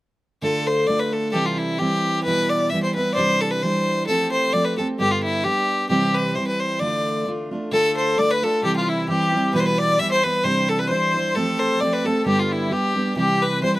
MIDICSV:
0, 0, Header, 1, 4, 480
1, 0, Start_track
1, 0, Tempo, 455235
1, 457, Time_signature, 2, 2, 24, 8
1, 14544, End_track
2, 0, Start_track
2, 0, Title_t, "Accordion"
2, 0, Program_c, 0, 21
2, 8152, Note_on_c, 0, 69, 62
2, 8625, Note_on_c, 0, 74, 79
2, 8644, Note_off_c, 0, 69, 0
2, 8754, Note_on_c, 0, 71, 72
2, 8761, Note_off_c, 0, 74, 0
2, 8888, Note_on_c, 0, 69, 63
2, 8890, Note_off_c, 0, 71, 0
2, 9108, Note_on_c, 0, 67, 63
2, 9113, Note_off_c, 0, 69, 0
2, 9241, Note_off_c, 0, 67, 0
2, 9245, Note_on_c, 0, 65, 72
2, 9374, Note_off_c, 0, 65, 0
2, 9376, Note_on_c, 0, 64, 77
2, 9596, Note_off_c, 0, 64, 0
2, 9598, Note_on_c, 0, 67, 81
2, 10068, Note_on_c, 0, 71, 75
2, 10084, Note_off_c, 0, 67, 0
2, 10176, Note_off_c, 0, 71, 0
2, 10192, Note_on_c, 0, 71, 84
2, 10321, Note_on_c, 0, 74, 87
2, 10326, Note_off_c, 0, 71, 0
2, 10525, Note_off_c, 0, 74, 0
2, 10545, Note_on_c, 0, 76, 80
2, 10664, Note_off_c, 0, 76, 0
2, 10673, Note_on_c, 0, 72, 81
2, 10793, Note_off_c, 0, 72, 0
2, 10808, Note_on_c, 0, 71, 73
2, 11020, Note_on_c, 0, 72, 73
2, 11030, Note_off_c, 0, 71, 0
2, 11262, Note_off_c, 0, 72, 0
2, 11282, Note_on_c, 0, 69, 75
2, 11389, Note_on_c, 0, 71, 59
2, 11393, Note_off_c, 0, 69, 0
2, 11489, Note_on_c, 0, 72, 89
2, 11501, Note_off_c, 0, 71, 0
2, 11968, Note_on_c, 0, 69, 71
2, 11987, Note_off_c, 0, 72, 0
2, 12458, Note_on_c, 0, 74, 71
2, 12465, Note_off_c, 0, 69, 0
2, 12718, Note_on_c, 0, 69, 72
2, 12725, Note_off_c, 0, 74, 0
2, 12920, Note_off_c, 0, 69, 0
2, 12936, Note_on_c, 0, 67, 66
2, 13069, Note_off_c, 0, 67, 0
2, 13071, Note_on_c, 0, 65, 67
2, 13197, Note_on_c, 0, 64, 68
2, 13202, Note_off_c, 0, 65, 0
2, 13415, Note_on_c, 0, 67, 63
2, 13421, Note_off_c, 0, 64, 0
2, 13859, Note_off_c, 0, 67, 0
2, 13896, Note_on_c, 0, 67, 74
2, 14154, Note_on_c, 0, 71, 74
2, 14162, Note_off_c, 0, 67, 0
2, 14369, Note_on_c, 0, 72, 79
2, 14378, Note_off_c, 0, 71, 0
2, 14491, Note_off_c, 0, 72, 0
2, 14498, Note_on_c, 0, 71, 69
2, 14544, Note_off_c, 0, 71, 0
2, 14544, End_track
3, 0, Start_track
3, 0, Title_t, "Fiddle"
3, 0, Program_c, 1, 110
3, 448, Note_on_c, 1, 69, 84
3, 705, Note_on_c, 1, 72, 74
3, 721, Note_off_c, 1, 69, 0
3, 917, Note_on_c, 1, 74, 84
3, 933, Note_off_c, 1, 72, 0
3, 1049, Note_on_c, 1, 71, 66
3, 1065, Note_off_c, 1, 74, 0
3, 1191, Note_on_c, 1, 69, 71
3, 1207, Note_off_c, 1, 71, 0
3, 1379, Note_off_c, 1, 69, 0
3, 1385, Note_on_c, 1, 69, 70
3, 1401, Note_on_c, 1, 67, 88
3, 1417, Note_off_c, 1, 69, 0
3, 1539, Note_on_c, 1, 65, 71
3, 1555, Note_off_c, 1, 67, 0
3, 1671, Note_on_c, 1, 64, 72
3, 1687, Note_off_c, 1, 65, 0
3, 1886, Note_on_c, 1, 67, 81
3, 1902, Note_off_c, 1, 64, 0
3, 2356, Note_off_c, 1, 67, 0
3, 2362, Note_on_c, 1, 71, 97
3, 2633, Note_on_c, 1, 74, 82
3, 2649, Note_off_c, 1, 71, 0
3, 2846, Note_on_c, 1, 76, 80
3, 2862, Note_off_c, 1, 74, 0
3, 2979, Note_off_c, 1, 76, 0
3, 2986, Note_on_c, 1, 72, 72
3, 3108, Note_off_c, 1, 72, 0
3, 3115, Note_on_c, 1, 71, 74
3, 3300, Note_on_c, 1, 74, 81
3, 3316, Note_off_c, 1, 71, 0
3, 3328, Note_on_c, 1, 72, 89
3, 3344, Note_off_c, 1, 74, 0
3, 3595, Note_on_c, 1, 69, 76
3, 3611, Note_off_c, 1, 72, 0
3, 3704, Note_on_c, 1, 71, 81
3, 3720, Note_off_c, 1, 69, 0
3, 3820, Note_on_c, 1, 72, 85
3, 3836, Note_off_c, 1, 71, 0
3, 4284, Note_off_c, 1, 72, 0
3, 4291, Note_on_c, 1, 69, 84
3, 4545, Note_off_c, 1, 69, 0
3, 4556, Note_on_c, 1, 72, 78
3, 4778, Note_on_c, 1, 74, 79
3, 4794, Note_off_c, 1, 72, 0
3, 4904, Note_on_c, 1, 71, 70
3, 4920, Note_off_c, 1, 74, 0
3, 5029, Note_off_c, 1, 71, 0
3, 5035, Note_on_c, 1, 69, 60
3, 5138, Note_off_c, 1, 69, 0
3, 5260, Note_on_c, 1, 67, 97
3, 5393, Note_on_c, 1, 65, 72
3, 5409, Note_off_c, 1, 67, 0
3, 5515, Note_off_c, 1, 65, 0
3, 5522, Note_on_c, 1, 64, 78
3, 5739, Note_on_c, 1, 67, 84
3, 5755, Note_off_c, 1, 64, 0
3, 6211, Note_off_c, 1, 67, 0
3, 6217, Note_on_c, 1, 67, 77
3, 6479, Note_on_c, 1, 71, 74
3, 6495, Note_off_c, 1, 67, 0
3, 6696, Note_on_c, 1, 72, 70
3, 6712, Note_off_c, 1, 71, 0
3, 6819, Note_off_c, 1, 72, 0
3, 6826, Note_on_c, 1, 71, 70
3, 6961, Note_on_c, 1, 72, 70
3, 6977, Note_off_c, 1, 71, 0
3, 7171, Note_on_c, 1, 74, 77
3, 7186, Note_off_c, 1, 72, 0
3, 7661, Note_off_c, 1, 74, 0
3, 8146, Note_on_c, 1, 69, 93
3, 8390, Note_off_c, 1, 69, 0
3, 8407, Note_on_c, 1, 72, 71
3, 8627, Note_on_c, 1, 74, 90
3, 8643, Note_off_c, 1, 72, 0
3, 8762, Note_on_c, 1, 71, 77
3, 8778, Note_off_c, 1, 74, 0
3, 8897, Note_on_c, 1, 69, 78
3, 8913, Note_off_c, 1, 71, 0
3, 9106, Note_off_c, 1, 69, 0
3, 9112, Note_on_c, 1, 67, 83
3, 9231, Note_off_c, 1, 67, 0
3, 9241, Note_on_c, 1, 65, 67
3, 9372, Note_on_c, 1, 64, 67
3, 9388, Note_off_c, 1, 65, 0
3, 9582, Note_off_c, 1, 64, 0
3, 9588, Note_on_c, 1, 67, 80
3, 10031, Note_off_c, 1, 67, 0
3, 10062, Note_on_c, 1, 71, 97
3, 10119, Note_on_c, 1, 72, 78
3, 10135, Note_off_c, 1, 71, 0
3, 10187, Note_on_c, 1, 71, 87
3, 10202, Note_off_c, 1, 72, 0
3, 10317, Note_on_c, 1, 74, 92
3, 10333, Note_off_c, 1, 71, 0
3, 10533, Note_on_c, 1, 76, 95
3, 10549, Note_off_c, 1, 74, 0
3, 10660, Note_off_c, 1, 76, 0
3, 10667, Note_on_c, 1, 72, 88
3, 10797, Note_on_c, 1, 71, 83
3, 10813, Note_off_c, 1, 72, 0
3, 11011, Note_on_c, 1, 72, 85
3, 11027, Note_off_c, 1, 71, 0
3, 11270, Note_on_c, 1, 69, 78
3, 11286, Note_off_c, 1, 72, 0
3, 11379, Note_on_c, 1, 71, 83
3, 11394, Note_off_c, 1, 69, 0
3, 11480, Note_off_c, 1, 71, 0
3, 11487, Note_on_c, 1, 72, 82
3, 11967, Note_on_c, 1, 69, 80
3, 11983, Note_off_c, 1, 72, 0
3, 12223, Note_on_c, 1, 72, 83
3, 12239, Note_off_c, 1, 69, 0
3, 12447, Note_on_c, 1, 74, 74
3, 12463, Note_off_c, 1, 72, 0
3, 12582, Note_on_c, 1, 71, 74
3, 12597, Note_off_c, 1, 74, 0
3, 12710, Note_on_c, 1, 69, 65
3, 12726, Note_off_c, 1, 71, 0
3, 12920, Note_off_c, 1, 69, 0
3, 12926, Note_on_c, 1, 67, 87
3, 13070, Note_on_c, 1, 65, 70
3, 13086, Note_off_c, 1, 67, 0
3, 13199, Note_on_c, 1, 64, 64
3, 13215, Note_off_c, 1, 65, 0
3, 13420, Note_on_c, 1, 67, 75
3, 13436, Note_off_c, 1, 64, 0
3, 13884, Note_off_c, 1, 67, 0
3, 13891, Note_on_c, 1, 67, 85
3, 14156, Note_on_c, 1, 71, 79
3, 14172, Note_off_c, 1, 67, 0
3, 14373, Note_off_c, 1, 71, 0
3, 14380, Note_on_c, 1, 72, 76
3, 14497, Note_off_c, 1, 72, 0
3, 14512, Note_on_c, 1, 71, 71
3, 14544, Note_off_c, 1, 71, 0
3, 14544, End_track
4, 0, Start_track
4, 0, Title_t, "Steel-string acoustic guitar"
4, 0, Program_c, 2, 25
4, 445, Note_on_c, 2, 50, 66
4, 454, Note_on_c, 2, 57, 62
4, 459, Note_on_c, 2, 62, 71
4, 469, Note_on_c, 2, 65, 73
4, 911, Note_off_c, 2, 50, 0
4, 923, Note_on_c, 2, 50, 53
4, 924, Note_off_c, 2, 57, 0
4, 933, Note_off_c, 2, 62, 0
4, 936, Note_on_c, 2, 57, 60
4, 940, Note_off_c, 2, 65, 0
4, 945, Note_on_c, 2, 62, 54
4, 953, Note_on_c, 2, 65, 48
4, 1406, Note_on_c, 2, 48, 61
4, 1407, Note_off_c, 2, 50, 0
4, 1412, Note_on_c, 2, 52, 64
4, 1416, Note_off_c, 2, 57, 0
4, 1416, Note_off_c, 2, 62, 0
4, 1420, Note_on_c, 2, 55, 64
4, 1420, Note_on_c, 2, 60, 64
4, 1422, Note_off_c, 2, 65, 0
4, 1426, Note_on_c, 2, 64, 69
4, 1887, Note_off_c, 2, 52, 0
4, 1891, Note_on_c, 2, 52, 50
4, 1896, Note_off_c, 2, 55, 0
4, 1896, Note_off_c, 2, 60, 0
4, 1897, Note_off_c, 2, 48, 0
4, 1900, Note_on_c, 2, 55, 54
4, 1909, Note_on_c, 2, 60, 65
4, 1916, Note_off_c, 2, 64, 0
4, 1920, Note_on_c, 2, 64, 53
4, 2373, Note_off_c, 2, 52, 0
4, 2379, Note_on_c, 2, 47, 54
4, 2385, Note_off_c, 2, 55, 0
4, 2385, Note_on_c, 2, 52, 61
4, 2389, Note_off_c, 2, 64, 0
4, 2389, Note_on_c, 2, 55, 63
4, 2390, Note_off_c, 2, 60, 0
4, 2399, Note_on_c, 2, 59, 72
4, 2402, Note_on_c, 2, 64, 73
4, 2853, Note_off_c, 2, 52, 0
4, 2865, Note_off_c, 2, 47, 0
4, 2865, Note_on_c, 2, 52, 50
4, 2872, Note_off_c, 2, 55, 0
4, 2875, Note_off_c, 2, 59, 0
4, 2876, Note_on_c, 2, 55, 55
4, 2877, Note_off_c, 2, 64, 0
4, 2889, Note_on_c, 2, 59, 50
4, 2895, Note_on_c, 2, 64, 60
4, 3114, Note_off_c, 2, 64, 0
4, 3127, Note_on_c, 2, 64, 52
4, 3129, Note_off_c, 2, 52, 0
4, 3133, Note_off_c, 2, 59, 0
4, 3135, Note_off_c, 2, 55, 0
4, 3145, Note_on_c, 2, 59, 39
4, 3160, Note_on_c, 2, 55, 34
4, 3341, Note_on_c, 2, 48, 58
4, 3342, Note_off_c, 2, 55, 0
4, 3344, Note_on_c, 2, 52, 70
4, 3349, Note_off_c, 2, 64, 0
4, 3350, Note_off_c, 2, 59, 0
4, 3354, Note_on_c, 2, 62, 66
4, 3355, Note_on_c, 2, 55, 61
4, 3362, Note_on_c, 2, 64, 69
4, 3811, Note_off_c, 2, 52, 0
4, 3824, Note_on_c, 2, 52, 53
4, 3828, Note_off_c, 2, 48, 0
4, 3830, Note_off_c, 2, 62, 0
4, 3834, Note_off_c, 2, 55, 0
4, 3838, Note_off_c, 2, 64, 0
4, 3838, Note_on_c, 2, 55, 56
4, 3843, Note_on_c, 2, 62, 58
4, 3856, Note_on_c, 2, 64, 55
4, 4297, Note_off_c, 2, 52, 0
4, 4301, Note_on_c, 2, 53, 54
4, 4305, Note_off_c, 2, 55, 0
4, 4309, Note_on_c, 2, 57, 61
4, 4314, Note_off_c, 2, 62, 0
4, 4318, Note_on_c, 2, 60, 67
4, 4320, Note_off_c, 2, 64, 0
4, 4324, Note_on_c, 2, 67, 67
4, 4767, Note_off_c, 2, 53, 0
4, 4780, Note_on_c, 2, 53, 50
4, 4781, Note_off_c, 2, 57, 0
4, 4791, Note_off_c, 2, 60, 0
4, 4794, Note_on_c, 2, 57, 57
4, 4804, Note_on_c, 2, 60, 57
4, 4807, Note_off_c, 2, 67, 0
4, 4811, Note_on_c, 2, 67, 53
4, 5025, Note_off_c, 2, 67, 0
4, 5038, Note_on_c, 2, 67, 45
4, 5046, Note_off_c, 2, 60, 0
4, 5048, Note_off_c, 2, 53, 0
4, 5056, Note_off_c, 2, 57, 0
4, 5059, Note_on_c, 2, 60, 43
4, 5069, Note_on_c, 2, 57, 36
4, 5259, Note_on_c, 2, 43, 65
4, 5265, Note_on_c, 2, 50, 70
4, 5266, Note_off_c, 2, 67, 0
4, 5270, Note_on_c, 2, 55, 66
4, 5271, Note_off_c, 2, 57, 0
4, 5274, Note_off_c, 2, 60, 0
4, 5276, Note_on_c, 2, 59, 63
4, 5278, Note_on_c, 2, 62, 70
4, 5279, Note_on_c, 2, 67, 70
4, 5717, Note_off_c, 2, 55, 0
4, 5730, Note_off_c, 2, 59, 0
4, 5730, Note_on_c, 2, 55, 51
4, 5741, Note_off_c, 2, 62, 0
4, 5742, Note_on_c, 2, 59, 59
4, 5747, Note_off_c, 2, 43, 0
4, 5749, Note_off_c, 2, 67, 0
4, 5750, Note_off_c, 2, 50, 0
4, 5754, Note_on_c, 2, 62, 60
4, 5762, Note_on_c, 2, 67, 55
4, 6213, Note_off_c, 2, 55, 0
4, 6214, Note_on_c, 2, 48, 58
4, 6221, Note_off_c, 2, 59, 0
4, 6222, Note_on_c, 2, 52, 68
4, 6225, Note_on_c, 2, 55, 68
4, 6229, Note_off_c, 2, 62, 0
4, 6232, Note_off_c, 2, 67, 0
4, 6233, Note_on_c, 2, 60, 77
4, 6237, Note_on_c, 2, 64, 76
4, 6686, Note_off_c, 2, 52, 0
4, 6699, Note_on_c, 2, 52, 51
4, 6701, Note_off_c, 2, 55, 0
4, 6704, Note_off_c, 2, 48, 0
4, 6710, Note_off_c, 2, 60, 0
4, 6714, Note_on_c, 2, 55, 52
4, 6715, Note_off_c, 2, 64, 0
4, 6723, Note_on_c, 2, 60, 51
4, 6731, Note_on_c, 2, 64, 52
4, 7172, Note_off_c, 2, 52, 0
4, 7177, Note_on_c, 2, 50, 60
4, 7183, Note_off_c, 2, 55, 0
4, 7187, Note_on_c, 2, 57, 68
4, 7189, Note_off_c, 2, 60, 0
4, 7193, Note_on_c, 2, 62, 68
4, 7195, Note_off_c, 2, 64, 0
4, 7200, Note_on_c, 2, 65, 66
4, 7640, Note_off_c, 2, 50, 0
4, 7653, Note_off_c, 2, 57, 0
4, 7653, Note_on_c, 2, 50, 56
4, 7659, Note_off_c, 2, 62, 0
4, 7666, Note_on_c, 2, 57, 51
4, 7668, Note_off_c, 2, 65, 0
4, 7672, Note_on_c, 2, 62, 52
4, 7681, Note_on_c, 2, 65, 53
4, 7908, Note_off_c, 2, 65, 0
4, 7920, Note_on_c, 2, 65, 46
4, 7922, Note_off_c, 2, 50, 0
4, 7923, Note_off_c, 2, 62, 0
4, 7929, Note_off_c, 2, 57, 0
4, 7936, Note_on_c, 2, 62, 46
4, 7949, Note_on_c, 2, 57, 36
4, 8130, Note_off_c, 2, 57, 0
4, 8134, Note_on_c, 2, 50, 67
4, 8139, Note_off_c, 2, 62, 0
4, 8142, Note_on_c, 2, 57, 70
4, 8145, Note_off_c, 2, 65, 0
4, 8152, Note_on_c, 2, 62, 73
4, 8157, Note_on_c, 2, 65, 83
4, 8606, Note_off_c, 2, 50, 0
4, 8619, Note_on_c, 2, 50, 51
4, 8620, Note_off_c, 2, 57, 0
4, 8625, Note_off_c, 2, 62, 0
4, 8632, Note_off_c, 2, 65, 0
4, 8632, Note_on_c, 2, 57, 46
4, 8638, Note_on_c, 2, 62, 62
4, 8649, Note_on_c, 2, 65, 57
4, 8868, Note_off_c, 2, 65, 0
4, 8881, Note_on_c, 2, 65, 45
4, 8882, Note_off_c, 2, 62, 0
4, 8884, Note_off_c, 2, 50, 0
4, 8890, Note_off_c, 2, 57, 0
4, 8895, Note_on_c, 2, 62, 44
4, 8909, Note_on_c, 2, 57, 37
4, 9096, Note_on_c, 2, 48, 61
4, 9103, Note_off_c, 2, 57, 0
4, 9103, Note_off_c, 2, 65, 0
4, 9103, Note_on_c, 2, 52, 59
4, 9107, Note_on_c, 2, 55, 60
4, 9108, Note_off_c, 2, 62, 0
4, 9112, Note_on_c, 2, 60, 60
4, 9115, Note_on_c, 2, 64, 73
4, 9566, Note_off_c, 2, 52, 0
4, 9570, Note_on_c, 2, 52, 57
4, 9577, Note_off_c, 2, 55, 0
4, 9578, Note_off_c, 2, 60, 0
4, 9580, Note_off_c, 2, 48, 0
4, 9582, Note_on_c, 2, 55, 54
4, 9591, Note_on_c, 2, 60, 60
4, 9598, Note_off_c, 2, 64, 0
4, 9602, Note_on_c, 2, 64, 65
4, 9819, Note_off_c, 2, 64, 0
4, 9832, Note_on_c, 2, 64, 50
4, 9836, Note_off_c, 2, 60, 0
4, 9837, Note_off_c, 2, 52, 0
4, 9843, Note_off_c, 2, 55, 0
4, 9849, Note_on_c, 2, 60, 40
4, 9860, Note_on_c, 2, 55, 41
4, 10050, Note_off_c, 2, 55, 0
4, 10053, Note_on_c, 2, 47, 62
4, 10057, Note_off_c, 2, 64, 0
4, 10061, Note_on_c, 2, 52, 65
4, 10063, Note_off_c, 2, 60, 0
4, 10063, Note_on_c, 2, 55, 78
4, 10068, Note_on_c, 2, 59, 71
4, 10073, Note_on_c, 2, 64, 85
4, 10518, Note_off_c, 2, 52, 0
4, 10531, Note_on_c, 2, 52, 50
4, 10536, Note_off_c, 2, 47, 0
4, 10537, Note_off_c, 2, 55, 0
4, 10540, Note_off_c, 2, 59, 0
4, 10541, Note_on_c, 2, 55, 56
4, 10546, Note_off_c, 2, 64, 0
4, 10552, Note_on_c, 2, 59, 59
4, 10560, Note_on_c, 2, 64, 72
4, 10772, Note_off_c, 2, 64, 0
4, 10785, Note_on_c, 2, 64, 50
4, 10794, Note_off_c, 2, 59, 0
4, 10796, Note_off_c, 2, 52, 0
4, 10801, Note_off_c, 2, 55, 0
4, 10806, Note_on_c, 2, 59, 38
4, 10816, Note_on_c, 2, 55, 36
4, 11004, Note_off_c, 2, 55, 0
4, 11007, Note_on_c, 2, 48, 76
4, 11012, Note_off_c, 2, 64, 0
4, 11016, Note_on_c, 2, 52, 68
4, 11017, Note_on_c, 2, 55, 66
4, 11021, Note_off_c, 2, 59, 0
4, 11025, Note_on_c, 2, 62, 67
4, 11030, Note_on_c, 2, 64, 81
4, 11476, Note_off_c, 2, 52, 0
4, 11488, Note_on_c, 2, 52, 53
4, 11491, Note_off_c, 2, 48, 0
4, 11496, Note_off_c, 2, 62, 0
4, 11497, Note_off_c, 2, 55, 0
4, 11502, Note_on_c, 2, 55, 52
4, 11503, Note_off_c, 2, 64, 0
4, 11508, Note_on_c, 2, 62, 53
4, 11516, Note_on_c, 2, 64, 59
4, 11733, Note_off_c, 2, 64, 0
4, 11746, Note_on_c, 2, 64, 48
4, 11751, Note_off_c, 2, 62, 0
4, 11753, Note_off_c, 2, 52, 0
4, 11760, Note_off_c, 2, 55, 0
4, 11763, Note_on_c, 2, 62, 37
4, 11776, Note_on_c, 2, 55, 35
4, 11971, Note_off_c, 2, 64, 0
4, 11973, Note_on_c, 2, 53, 55
4, 11979, Note_off_c, 2, 62, 0
4, 11981, Note_off_c, 2, 55, 0
4, 11985, Note_on_c, 2, 57, 65
4, 11991, Note_on_c, 2, 60, 75
4, 11994, Note_on_c, 2, 67, 77
4, 12433, Note_off_c, 2, 53, 0
4, 12444, Note_off_c, 2, 57, 0
4, 12446, Note_on_c, 2, 53, 57
4, 12451, Note_off_c, 2, 60, 0
4, 12457, Note_on_c, 2, 57, 56
4, 12463, Note_on_c, 2, 60, 62
4, 12469, Note_off_c, 2, 67, 0
4, 12473, Note_on_c, 2, 67, 56
4, 12688, Note_off_c, 2, 67, 0
4, 12700, Note_on_c, 2, 67, 45
4, 12707, Note_off_c, 2, 60, 0
4, 12711, Note_off_c, 2, 53, 0
4, 12716, Note_off_c, 2, 57, 0
4, 12720, Note_on_c, 2, 60, 45
4, 12731, Note_on_c, 2, 57, 39
4, 12921, Note_on_c, 2, 43, 62
4, 12923, Note_on_c, 2, 50, 68
4, 12927, Note_off_c, 2, 67, 0
4, 12930, Note_off_c, 2, 57, 0
4, 12931, Note_on_c, 2, 55, 68
4, 12934, Note_off_c, 2, 60, 0
4, 12934, Note_on_c, 2, 59, 79
4, 12939, Note_on_c, 2, 62, 73
4, 12941, Note_on_c, 2, 67, 69
4, 13377, Note_off_c, 2, 55, 0
4, 13390, Note_on_c, 2, 55, 54
4, 13392, Note_off_c, 2, 59, 0
4, 13403, Note_off_c, 2, 62, 0
4, 13404, Note_on_c, 2, 59, 55
4, 13406, Note_off_c, 2, 43, 0
4, 13406, Note_off_c, 2, 67, 0
4, 13408, Note_off_c, 2, 50, 0
4, 13416, Note_on_c, 2, 62, 53
4, 13419, Note_on_c, 2, 67, 63
4, 13637, Note_off_c, 2, 67, 0
4, 13650, Note_off_c, 2, 62, 0
4, 13650, Note_on_c, 2, 67, 46
4, 13660, Note_off_c, 2, 59, 0
4, 13662, Note_off_c, 2, 55, 0
4, 13662, Note_on_c, 2, 62, 44
4, 13673, Note_on_c, 2, 59, 41
4, 13677, Note_on_c, 2, 55, 35
4, 13873, Note_on_c, 2, 48, 67
4, 13874, Note_off_c, 2, 55, 0
4, 13878, Note_on_c, 2, 52, 65
4, 13880, Note_off_c, 2, 67, 0
4, 13884, Note_off_c, 2, 59, 0
4, 13884, Note_off_c, 2, 62, 0
4, 13888, Note_on_c, 2, 55, 73
4, 13889, Note_on_c, 2, 60, 72
4, 13897, Note_on_c, 2, 64, 63
4, 14345, Note_off_c, 2, 52, 0
4, 14357, Note_on_c, 2, 52, 58
4, 14359, Note_off_c, 2, 55, 0
4, 14362, Note_off_c, 2, 48, 0
4, 14370, Note_off_c, 2, 60, 0
4, 14371, Note_on_c, 2, 55, 60
4, 14373, Note_off_c, 2, 64, 0
4, 14380, Note_on_c, 2, 60, 57
4, 14385, Note_on_c, 2, 64, 57
4, 14544, Note_off_c, 2, 52, 0
4, 14544, Note_off_c, 2, 55, 0
4, 14544, Note_off_c, 2, 60, 0
4, 14544, Note_off_c, 2, 64, 0
4, 14544, End_track
0, 0, End_of_file